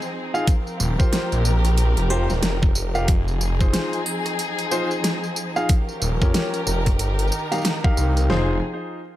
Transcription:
Already playing: string section F3 C4 D#4 G#4
0.02 tambourine
0.34 grand piano D#4 F4 G#4 F5, tambourine
0.47 string section F3 G4 A#4, kick, closed hi-hat, tambourine
0.67 tambourine
0.80 detuned saw bass D#1, tambourine
0.99 grand piano F4 G4 A#4 C5, kick, tambourine
1.12 grand piano F4 G4 A#4 C5, snare, closed hi-hat, tambourine
1.32 detuned saw bass A#1, closed hi-hat, tambourine
1.45 tambourine
1.65 cross-stick, closed hi-hat, tambourine
1.78 closed hi-hat, tambourine
1.97 detuned saw bass F1, closed hi-hat, tambourine
2.10 grand piano F4 G4 A#4 C5, tambourine
2.30 detuned saw bass D#1, snare, tambourine
2.43 detuned saw bass F1, snare, closed hi-hat, tambourine
2.62 kick, tambourine
2.75 tambourine
2.95 grand piano F4 G4 A#4 F5, tambourine
3.08 detuned saw bass F1, string section F3 C4 D#4 G#4, kick, closed hi-hat, tambourine
3.28 tambourine
3.41 tambourine
3.60 grand piano D#4 F4 G#4 C5, kick, tambourine
3.73 grand piano D#4 F4 G#4 C5, snare, closed hi-hat, tambourine
3.93 closed hi-hat, tambourine
4.06 tambourine
4.26 cross-stick, closed hi-hat, tambourine
4.39 closed hi-hat, tambourine
4.59 closed hi-hat, tambourine
4.71 grand piano D#4 F4 G#4 C5, tambourine
4.91 tambourine
5.04 snare, closed hi-hat, tambourine
5.24 tambourine
5.36 tambourine
5.56 grand piano D#4 F4 G#4 F5, tambourine
5.69 string section C#4 G4 A#4, kick, closed hi-hat, tambourine
5.89 tambourine
6.02 detuned saw bass D#1, tambourine
6.21 detuned saw bass F2, grand piano C#4 F4 G4 A#4, kick, tambourine
6.34 grand piano C#4 F4 G4 A#4, snare, closed hi-hat, tambourine
6.54 closed hi-hat, tambourine
6.67 detuned saw bass F1, tambourine
6.86 kick, cross-stick, closed hi-hat, tambourine
6.99 detuned saw bass G1, string section D#3 D#4, closed hi-hat, tambourine
7.19 closed hi-hat, tambourine
7.27 tambourine
7.32 tambourine
7.39 tambourine
7.52 grand piano D#4 G4 A#4 F5, snare, closed hi-hat, tambourine
7.54 snare, tambourine
7.58 snare, tambourine
7.60 snare, tambourine
7.63 snare
7.65 snare, closed hi-hat, tambourine
7.84 grand piano D#4 G4 A#4 F5, kick
7.97 detuned saw bass C2, tambourine
8.17 closed hi-hat, tambourine
8.30 detuned saw bass F1, string section F3 C4 D#4 G#4, grand piano D#4 F4 G#4 C5, snare

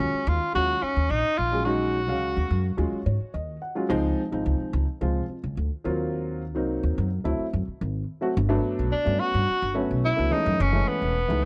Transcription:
Already playing: grand piano F#3 G#3 C#4 F4, tenor saxophone C#4
0.13 muted upright bass stroke
0.27 upright bass D#2, tenor saxophone F4
0.53 upright bass D#2, grand piano F#3 G#3 C#4 F4, tenor saxophone F#4
0.82 grand piano C#4 D#4, tenor saxophone C#4, muted upright bass stroke
0.96 upright bass D#2
1.10 upright bass A#1, tenor saxophone D#4
1.38 upright bass A#1, tenor saxophone F4
1.52 grand piano F#3 G#3 C#4 G#4
1.65 grand piano F#3 G#3 C#4 D#4, tenor saxophone F#4
2.08 upright bass C#2, grand piano F#3 G#3 C#4 F5
2.37 upright bass D#2
2.50 upright bass F#2
2.77 upright bass D#2, grand piano F#3 G#3 C#4 F4
2.92 muted upright bass stroke
3.05 upright bass G#2, grand piano C#4 F#4 C#5
3.20 muted upright bass stroke
3.34 upright bass D#2, grand piano D#5
3.62 grand piano F#5
3.75 grand piano F#3 G#3 C#4 F4
3.89 upright bass C#2, grand piano F3 G#3 C4 D#4
4.32 upright bass G#1, grand piano F3 G#3 C4 D#4
4.46 upright bass C#2
4.60 muted upright bass stroke
4.73 upright bass C#2
5.01 upright bass C#2, grand piano F3 G#3 C4 F4
5.28 grand piano C4 F4, muted upright bass stroke
5.44 upright bass C#2
5.57 upright bass D2
5.84 upright bass D#2, grand piano F#3 A#3 C4 F4
6.55 upright bass C2, grand piano F#3 A#3 C4 D#4
6.83 upright bass D#2
6.98 upright bass F#2
7.24 upright bass D2, grand piano F#3 A3 C4 E4
7.39 muted upright bass stroke
7.52 upright bass F#2, grand piano C4 F#4
7.68 muted upright bass stroke
7.81 upright bass G#1
8.21 grand piano F#3 A3 C4 F#4
8.37 upright bass G1
8.49 grand piano F#3 A3 B3 D4
8.79 upright bass B1
8.92 tenor saxophone D4, muted upright bass stroke
9.05 upright bass G2, grand piano F#3 A3 B3 C#4
9.20 tenor saxophone F#4
9.34 upright bass G2
9.47 grand piano B3 C#4, muted upright bass stroke
9.62 upright bass G1
9.74 grand piano F#3 A3 B3 C#4
9.91 upright bass B1
10.05 tenor saxophone E4
10.16 upright bass C#2, grand piano F#3 A3 B3 D4
10.31 grand piano E3 G#3 A3 C#4, tenor saxophone D#4, muted upright bass stroke
10.46 upright bass F#2
10.60 upright bass F#1, tenor saxophone C#4
10.72 grand piano E3 G#3 A3 C#4
10.88 tenor saxophone B3
11.02 upright bass E1
11.28 upright bass C#2, grand piano E3 G#3 A3 D#4

